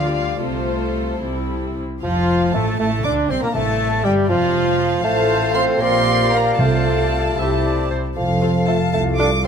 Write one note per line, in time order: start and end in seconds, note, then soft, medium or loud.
0.00 0.38 D2 medium
0.00 0.38 D3 medium
0.00 0.42 G3 soft
0.00 0.41 F4 soft
0.00 0.42 D5 medium
0.00 0.13 F5 medium
0.15 0.41 F5 medium
0.41 1.21 C2 soft
0.41 1.21 C3 soft
0.41 1.22 A3 soft
0.41 1.21 F4 soft
0.41 1.62 A4 soft
0.41 1.21 C5 medium
1.22 1.81 C2 soft
1.22 1.81 C3 soft
1.22 1.82 G3 soft
1.22 1.81 E4 soft
2.02 2.51 F1 medium
2.02 2.51 F2 medium
2.02 2.51 F3 medium
2.02 2.56 F3 medium
2.02 2.51 F3 medium
2.02 2.51 F3 soft
2.02 2.51 F3 medium
2.02 2.50 F4 soft
2.02 2.51 F4 medium
2.02 2.51 F5 soft
2.53 2.79 A1 medium
2.53 2.78 A2 medium
2.53 2.78 A3 soft
2.53 2.66 A3 medium
2.53 2.79 A3 soft
2.53 2.80 A3 medium
2.53 2.79 A3 soft
2.53 2.79 A4 soft
2.53 2.77 A5 soft
2.79 3.05 A1 soft
2.79 3.04 A2 medium
2.79 2.87 A3 soft
2.79 2.91 A3 medium
2.79 2.88 A3 soft
2.79 2.91 A3 medium
2.79 3.06 A3 medium
2.79 3.05 A3 medium
2.79 2.86 A4 soft
2.79 3.04 A5 medium
3.04 3.30 D2 medium
3.04 3.30 D3 medium
3.04 3.29 D4 medium
3.04 3.31 D4 medium
3.04 3.32 D4 medium
3.04 3.11 D4 medium
3.04 3.30 D4 medium
3.04 3.18 D4 medium
3.04 3.12 D6 medium
3.29 3.35 C2 soft
3.29 3.35 C3 soft
3.29 3.42 C4 soft
3.29 3.44 C4 medium
3.29 3.36 C4 soft
3.29 3.43 C4 soft
3.29 3.44 C4 soft
3.29 3.42 C4 soft
3.29 3.37 C4 soft
3.29 3.42 C6 soft
3.41 3.47 A#2 soft
3.41 3.55 A#3 medium
3.41 3.47 A#3 soft
3.41 3.48 A#3 soft
3.41 3.57 A#3 medium
3.41 3.48 A#3 soft
3.41 3.54 A#3 medium
3.41 3.48 A#4 medium
3.41 3.55 A#5 soft
3.53 4.04 A1 medium
3.53 4.04 A2 medium
3.53 4.25 C3 medium
3.53 4.03 A3 medium
3.53 4.06 A3 medium
3.53 4.03 A3 medium
3.53 4.04 A3 medium
3.53 4.05 A3 medium
3.53 4.06 A4 medium
3.53 4.04 A5 medium
4.04 4.29 G1 medium
4.04 4.30 G2 medium
4.04 4.15 G3 medium
4.04 4.28 G3 medium
4.04 4.30 G3 medium
4.04 4.29 G3 medium
4.04 4.30 G3 medium
4.04 4.31 G4 medium
4.04 4.12 G5 medium
4.29 5.04 F1 medium
4.29 5.04 F2 medium
4.29 5.02 F3 medium
4.29 5.04 F3 medium
4.29 5.03 F3 medium
4.29 5.04 F3 medium
4.29 5.02 F4 medium
4.29 5.04 F4 medium
4.29 5.03 F5 medium
5.03 5.77 A1 medium
5.03 5.77 A2 medium
5.03 5.57 A3 medium
5.03 5.77 F4 medium
5.03 7.34 F4 medium
5.03 5.78 A4 medium
5.03 5.83 A4 medium
5.03 5.83 C5 medium
5.03 5.77 C5 medium
5.03 5.77 F5 medium
5.03 7.40 F5 medium
5.03 5.56 A5 medium
5.55 5.81 C4 medium
5.55 5.63 C6 medium
5.81 6.59 A#1 medium
5.81 6.59 A#2 medium
5.81 6.35 C4 medium
5.81 6.59 G4 medium
5.81 6.59 A#4 soft
5.81 6.57 A#4 soft
5.81 6.59 A#4 medium
5.81 6.58 D5 medium
5.81 6.61 D5 medium
5.81 6.32 C6 medium
6.33 6.59 A#3 medium
6.33 6.59 A#5 medium
6.58 7.36 C2 soft
6.58 7.34 C3 medium
6.58 7.36 C3 soft
6.58 7.88 A3 medium
6.58 7.36 F4 soft
6.58 7.36 A4 soft
6.58 7.38 A4 soft
6.58 7.40 A4 soft
6.58 7.33 C5 soft
6.58 7.37 D5 soft
6.58 7.87 A5 medium
7.37 7.95 C2 soft
7.37 7.95 C3 soft
7.37 7.90 E4 soft
7.37 7.96 E4 soft
7.37 7.90 G4 soft
7.37 7.96 G4 soft
7.37 7.90 G4 soft
7.37 7.96 C5 soft
7.37 7.91 E5 soft
7.37 7.50 E5 medium
7.65 7.90 D5 soft
7.91 8.02 C5 soft
8.16 8.80 F1 medium
8.16 8.80 F2 medium
8.16 8.64 F3 medium
8.16 8.89 F4 soft
8.16 8.89 A4 soft
8.16 9.47 A4 medium
8.16 8.64 F5 medium
8.16 9.47 F5 medium
8.42 8.50 F4 soft
8.42 8.50 A4 soft
8.42 8.50 C5 soft
8.67 8.79 A3 medium
8.67 8.76 F4 soft
8.67 8.76 A4 soft
8.67 8.75 C5 soft
8.67 8.92 A5 medium
8.93 9.47 C2 medium
8.93 9.05 A3 medium
8.93 9.47 F4 medium
8.93 9.47 A4 medium
8.93 9.01 A5 medium
9.19 9.31 D4 medium
9.19 9.27 F4 soft
9.19 9.27 A4 soft
9.19 9.27 C5 soft
9.19 9.44 D6 medium
9.44 9.47 A4 soft